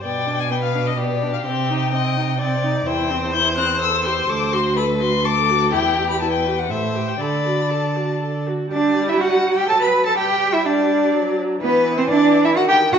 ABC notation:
X:1
M:3/4
L:1/16
Q:1/4=126
K:Cm
V:1 name="Violin"
g3 a g f2 e d3 f | g8- g2 z2 | [K:G] g4 g'2 f'2 e'2 c'2 | d'2 c'2 b2 c'2 d'4 |
g3 b a g2 f e3 g | b4 a4 z4 | d3 e f3 g a b2 a | g3 e d6 z2 |
B3 c d3 e _g =g2 _g |]
V:2 name="Violin"
d4 =B4 G4- | G4 e4 d4 | [K:G] c12- | c4 B4 A4 |
G4 B4 c4 | d8- d2 z2 | d3 e f3 g a b2 a | g3 e d6 z2 |
B3 c d3 e _g =g2 _g |]
V:3 name="Viola"
=B,2 D2 B,2 D2 B,2 D2 | C2 E2 C2 E2 C2 E2 | [K:G] E2 C2 E2 C2 A2 G2 | A2 F2 A2 F2 A2 F2 |
E2 G2 E2 G2 A2 G2 | A2 F2 A2 F2 A2 F2 | G,8 F,4 | G,8 F,4 |
E,8 _E,4 |]
V:4 name="Cello"
=B,,12 | C,12 | [K:G] E,,12 | D,,12 |
E,,8 A,,4 | D,8- D,2 z2 | D3 E F3 G A B2 A | G3 E D6 z2 |
B,3 C D3 E _G =G2 _G |]